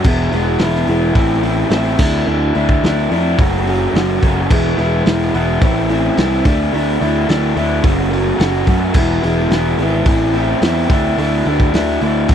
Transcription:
0.04 E1 E2 B2 E3 G#3 B3 E4, kick, crash
0.32 E1 E2 B2 E3 G#3 B3 E4, open hi-hat
0.58 E1 E2 B2 E3 G#3 B3, snare, open hi-hat
0.63 E4
0.75 snare
0.87 E1 E2 B2 E3 G#3 B3 E4, open hi-hat
1.14 A1 A2 E3 A3 C4 E4, kick, open hi-hat
1.42 A2 E3 A3 C4 E4, open hi-hat
1.70 A1 A2 E3 A3 C4 E4, snare, open hi-hat
1.99 D2 D3 A3 D4 E4, kick, crash
2.27 D2 D3 A3 D4 E4
2.55 D2 D3 A3 D4 E4, open hi-hat
2.69 kick
2.83 D2 D3 A3 D4 E4, snare, open hi-hat
3.11 F2 D3 A3 D4 E4, open hi-hat
3.38 F#1 F#2 C#3 F#3 A3 C#4 F#4, kick, open hi-hat
3.66 F#2 C#3 F#3 A3 C#4 F#4, open hi-hat
3.94 F#1 F#2 C#3 F#3 A3 C#4 F#4, snare, open hi-hat
4.22 F#1 F#2 C#3 F#3 A3 C#4 F#4, kick, open hi-hat
4.50 E1 E2 B2 E3 G#3 B3 E4, kick, crash
4.76 E1 E2 B2 E3 G#3 B3 E4, open hi-hat
5.04 E1 E2 B2 E3 G#3 B3 E4, snare, open hi-hat
5.22 snare
5.33 E1 E2 B2 E3 G#3 B3 E4, open hi-hat
5.60 A1 A2 E3 A3 C4 E4, kick, open hi-hat
5.89 A2 E3 A3 C4 E4, open hi-hat
6.17 C2 A2 E3 A3 C4 E4, snare, open hi-hat
6.45 D2 D3 A3 D4 E4, kick, open hi-hat
6.73 D2 D3 A3 D4 E4, open hi-hat
7.00 D2 D3 A3 D4 E4, open hi-hat
7.28 D2 D3 A3 D4 E4, snare, open hi-hat
7.56 D2 D3 A3 D4 E4, open hi-hat
7.82 F#1 F#2 C#3 F#3 A3 C#4 F#4, kick, open hi-hat
8.09 F#2 C#3 F#3 A3 C#4 F#4, open hi-hat
8.37 F#1 F#2 C#3 F#3 A3 C#4 F#4, snare, open hi-hat
8.66 F#2 C#3 F#3 A3 C#4 F#4, kick, open hi-hat
8.94 E1 E2 B2 E3 G#3 B3 E4, kick, crash
9.22 E1 E2 B2 E3 G#3 B3 E4, open hi-hat
9.50 E1 E2 B2 E3 G#3 B3 E4, snare, open hi-hat
9.78 G#1 E2 B2 E3 G#3 B3, open hi-hat
9.82 E4
10.05 A1 A2 E3 A3 C4 E4, kick, open hi-hat
10.34 A2 E3 A3 C4 E4, open hi-hat
10.62 E2 A2 E3 A3 C4 E4, snare, open hi-hat
10.89 D2 D3 A3 D4 E4, kick, open hi-hat
11.18 D2 D3 A3 D4 E4, open hi-hat
11.45 D2 D3 A3, open hi-hat
11.49 D4 E4
11.60 kick
11.73 D2 D3 A3 D4 E4, snare, open hi-hat
11.88 snare
12.01 D2 D3 A3 D4 E4, open hi-hat
12.28 F#1 F#2 C#3 F#3 A3 C#4 F#4, kick, open hi-hat

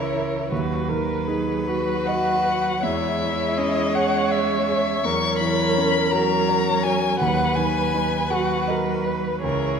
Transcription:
Already playing: C#2 C#3 E3 E4 A#4 C#5 E5
0.16 A#4
0.51 D#2 F#3 F#4 B4
0.89 D#3 A#4
1.27 D#4 G#4
1.68 F#4 B4
2.07 D#5 F#5
2.45 B4
2.82 E2 G#3 E4 C#5 E5
3.21 E3
3.57 C#4 D#5
3.93 G#4 C#5 F#5
4.32 C#5 E5
4.69 G#4
5.04 E2 F#3 A#4 C#5 C#6
5.39 E3 B5
5.77 C#4
6.11 F#3 F#4 C#5 A#5
6.49 C#5
6.83 F#4 G#5
7.20 D#2 F#3 B4 F#5
7.55 D#3 G#5
7.94 D#4
8.30 F#3 F#4 B4 F#5
8.68 A#4 D#5
9.06 B4
9.43 C#2 E3 G#4 A#4 C#5

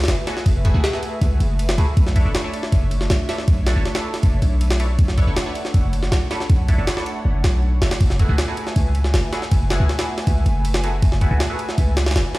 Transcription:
Already playing: A3 B3 E4 F#4 G#4 B4 E5
0.04 snare, ride
0.08 F#1, snare, ride
0.27 A3 B3 E4 F#4 G#4, snare, ride
0.37 snare
0.46 F#1, kick, ride
0.65 A3 B3 E4 F#4 G#4, kick, ride
0.74 C#2 A3 B3 E4 F#4 G#4
0.84 snare, ride
0.93 A3 B3 E4 F#4 G#4, snare
1.03 ride
1.21 C#2, kick, ride
1.40 F#1, ride
1.59 ride
1.69 snare
1.78 C#2 A3 B3 E4 F#4 G#4, ride
1.97 B1 D4 C#5, kick, ride
2.07 snare
2.16 D4 E4 A4 B4 C#5, kick, ride
2.25 F#1 D4 E4 A4 B4 C#5
2.35 snare, ride
2.44 D4 E4 A4 B4 C#5
2.54 ride
2.63 snare
2.72 F#1, kick, ride
2.91 ride
3.01 snare
3.10 B1, snare, ride
3.29 D4 E4 A4 B4 C#5, snare, ride
3.38 snare
3.48 B1, kick, ride
3.66 D4 E4 A4 B4 C#5, snare, ride
3.76 F#1 D4 E4 A4 B4 C#5
3.85 snare, ride
3.95 D4 E4 A4 B4 C#5, snare, ride
4.14 snare, ride
4.23 F#1, kick, ride
4.42 B1, ride
4.61 ride
4.70 snare
4.80 D4 E4 A4 B4 C#5, ride
4.99 B1 F#5, kick, ride
5.08 snare
5.17 D4 E4 A4 B4 C#5, kick, ride
5.27 F#1 D4 E4 A4 B4 C#5
5.36 snare, ride
5.46 D4 E4 A4 B4 C#5
5.55 ride
5.65 snare
5.74 F#1, kick, ride
5.93 ride
6.03 snare
6.12 B1, snare, ride
6.31 D4 E4 A4 B4 C#5, snare, ride
6.40 snare
6.50 B1, kick, ride
6.68 D4 E4 A4 B4 C#5, kick, ride
6.78 F#1 D4 E4 A4 B4 C#5
6.87 snare, ride
6.97 D4 E4 A4 B4 C#5, snare
7.06 ride
7.25 F#1
7.44 B1, snare, ride
7.82 F#1 D4 E4 A4 B4 C#5, snare, ride
7.91 snare, ride
8.00 F#1 A3 B4 E5 G#5, kick, ride
8.10 snare
8.19 A3 B3 E4 F#4 G#4, kick, ride
8.29 C#2 A3 B3 E4 F#4 G#4
8.38 snare, ride
8.48 A3 B3 E4 F#4 G#4
8.57 ride
8.67 snare
8.76 C#2, kick, ride
8.95 ride
9.04 snare
9.14 F#1, snare, ride
9.33 A3 B3 E4 F#4 G#4, snare, ride
9.42 snare
9.51 F#1, kick, ride
9.70 A3 B3 E4 F#4 G#4, snare, ride
9.80 C#2 A3 B3 E4 F#4 G#4
9.89 snare, ride
9.99 A3 B3 E4 F#4 G#4, snare, ride
10.18 snare, ride
10.27 C#2, kick, ride
10.46 F#1, ride
10.65 ride
10.74 snare
10.84 A3 B3 E4 F#4 G#4, ride
11.02 F#1, kick, ride
11.12 snare
11.21 A3 B3 E4 F#4 G#4, kick, ride
11.31 C#2 A3 B3 E4 F#4 G#4
11.40 snare, ride
11.50 A3 B3 E4 F#4 G#4
11.59 ride
11.69 snare
11.78 C#2, kick, ride
11.97 snare, ride
12.06 snare, ride
12.11 snare, ride
12.16 F#1, snare, ride
12.35 A3 B3 E4 F#4 G#4, snare, ride

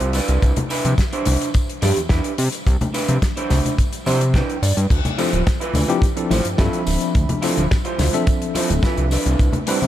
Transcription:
Already playing: E5
0.00 C2, closed hi-hat
0.13 D4 E4 B4 D5, open hi-hat, tambourine
0.28 C2, closed hi-hat, tambourine
0.42 C2, kick, closed hi-hat, tambourine
0.56 closed hi-hat, low conga
0.70 D4 E4 B4, open hi-hat, tambourine
0.85 C3, closed hi-hat, tambourine, high conga
0.98 kick, snare, closed hi-hat, tambourine
1.13 D4 E4 C5, closed hi-hat
1.25 C2, open hi-hat, tambourine, low conga
1.41 closed hi-hat, tambourine
1.54 kick, closed hi-hat, tambourine
1.69 closed hi-hat
1.82 G2 D4 E4 G4, open hi-hat, tambourine, high conga
1.97 E2, closed hi-hat, tambourine
2.09 E2 D4 E4 B4, kick, snare, closed hi-hat, tambourine
2.24 closed hi-hat
2.38 C3, open hi-hat, tambourine
2.52 muted clean electric guitar stroke, closed hi-hat, tambourine
2.67 C2, kick, closed hi-hat, tambourine
2.81 closed hi-hat, tambourine, low conga
2.94 D4 E4 B4, open hi-hat, tambourine
3.08 C3, closed hi-hat, tambourine, high conga
3.22 kick, snare, closed hi-hat, tambourine
3.36 D4 E4 C5, closed hi-hat
3.50 C2, snare, open hi-hat, tambourine, low conga
3.65 closed hi-hat, tambourine, low conga
3.78 kick, closed hi-hat, tambourine
3.93 closed hi-hat, tambourine
4.06 C3 D4 E4 C5, open hi-hat, tambourine, high conga
4.21 closed hi-hat, tambourine
4.34 D4 E4 B4 G5, kick, snare, closed hi-hat, tambourine
4.50 closed hi-hat
4.62 G2 D5, open hi-hat, tambourine
4.77 G2, muted clean electric guitar stroke, closed hi-hat, tambourine
4.90 D2, kick, closed hi-hat, crash, tambourine
5.05 closed hi-hat, low conga
5.18 F3 C4 D4 E4 F4 A4 C5, open hi-hat, tambourine
5.33 D1, closed hi-hat, tambourine, high conga
5.47 kick, snare, closed hi-hat, tambourine
5.60 E4 F4 B4, closed hi-hat
5.74 D2, open hi-hat, tambourine, low conga
5.88 F3 C4 D4 E4 G4, closed hi-hat, tambourine
6.02 kick, closed hi-hat, tambourine
6.16 F3 C4 D4 E4 A4, closed hi-hat
6.30 A1 E4 F4 C5, open hi-hat, tambourine, high conga
6.45 G2, closed hi-hat, tambourine
6.58 G2 F3 C4 D4 E4 F4 A4 E5 B5, kick, snare, closed hi-hat, tambourine
6.73 closed hi-hat
6.87 D1, open hi-hat, tambourine
7.00 muted clean electric guitar stroke, closed hi-hat, tambourine
7.15 D2, kick, closed hi-hat, tambourine
7.29 closed hi-hat, low conga
7.42 F3 C4 D4 E4 F4 A4 C5, open hi-hat, tambourine
7.57 D1, closed hi-hat, tambourine, high conga
7.71 kick, snare, closed hi-hat, tambourine
7.85 E4 F4 C5, closed hi-hat
7.99 D2, snare, open hi-hat, tambourine, low conga
8.13 F3 C4 D4 A4 E5, closed hi-hat, tambourine
8.27 kick, closed hi-hat, tambourine
8.42 closed hi-hat
8.55 E4 F4 C5, open hi-hat, tambourine, high conga
8.70 D1, closed hi-hat, tambourine
8.83 E4 F4 B4, kick, snare, closed hi-hat, tambourine
8.97 C2, closed hi-hat
9.11 D4 E4 B4, open hi-hat, tambourine
9.25 C2, closed hi-hat, tambourine
9.39 C2, kick, closed hi-hat, tambourine
9.53 closed hi-hat, low conga
9.67 G3 C4 D4 E4 B4 C5, open hi-hat, tambourine
9.82 C3, closed hi-hat, tambourine, high conga

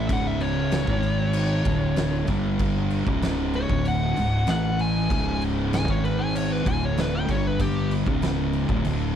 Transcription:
Already playing: E5
0.09 C#1 C#2 G#2 C#3 F#5, kick, crash
0.27 E5
0.40 C#5, crash
0.71 snare, crash
0.87 G#1 G#2 D#3 G#3, kick
1.03 crash
1.33 crash
1.65 D1 D2 A2 D3, kick, crash
1.96 snare, crash
2.27 G1 G2 D3 G3, kick, crash
2.59 kick, crash
2.90 crash
3.07 C#1 C#2 G#2 C#3, kick
3.22 snare, crash
3.53 C#5, crash
3.69 D1 D2 A2 D3, kick
3.85 F#5, crash
4.16 C#1 C#2 G#2, crash
4.47 A1 A2 E3 A3 F#5, snare, crash
4.79 G#5, crash
5.10 C#1 C#2 G#2 C#3, kick, crash
5.41 crash
5.73 G#5, snare, crash
5.88 G#1 G#2 D#3 G#3 C#5, kick
6.05 B4, crash
6.19 G#5
6.35 C#5, crash
6.52 B4
6.66 D1 D2 A2 D3 G#5, kick, crash
6.85 C#5
6.98 B4, snare, crash
7.15 G5
7.29 G1 G2 D3 G3 C#5, kick, crash
7.47 B4
7.59 G4, kick, crash
7.91 crash
8.06 C#1 C#2 G#2 C#3, kick
8.22 snare, crash
8.53 crash
8.69 D1 D2 A2, kick
8.85 D1 D2 A2 D3, crash

